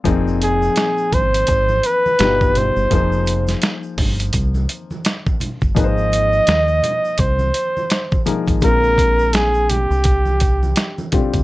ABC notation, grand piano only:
X:1
M:4/4
L:1/8
Q:"Swing 16ths" 1/4=84
K:Fdor
V:1 name="Grand piano"
[B,,F,CEA]6 [=B,,G,^DFG]2 | [F,B,EAc]8 | [F,B,EA=Bc]6- [F,_B,EA=Bc] [F,_B,EA_B] | [D,A,CFB]6- [D,A,CFB] [D,G,CFG] |]